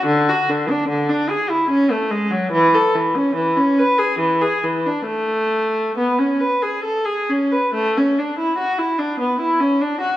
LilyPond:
\new Staff \with { instrumentName = "Viola" } { \time 3/4 \key a \major \tempo 4 = 71 d16 fis'16 d16 d'16 d16 d'16 gis'16 e'16 cis'16 a16 gis16 fis16 | e16 a'16 e16 cis'16 e16 cis'16 b'16 gis'16 e16 gis'16 e16 d'16 | a4 b16 cis'16 b'16 gis'16 a'16 gis'16 cis'16 b'16 | a16 cis'16 d'16 e'16 fis'16 e'16 d'16 b16 e'16 cis'16 d'16 fis'16 | }